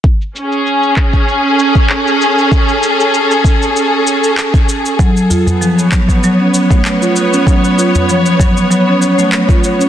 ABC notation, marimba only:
X:1
M:4/4
L:1/16
Q:"Swing 16ths" 1/4=97
K:A
V:1 name="Marimba"
z16 | z16 | F,2 ^E z ^E, z F, z F, C z A, z E z C | F,2 ^E z ^E, z F, z F, C z A, z E z C |]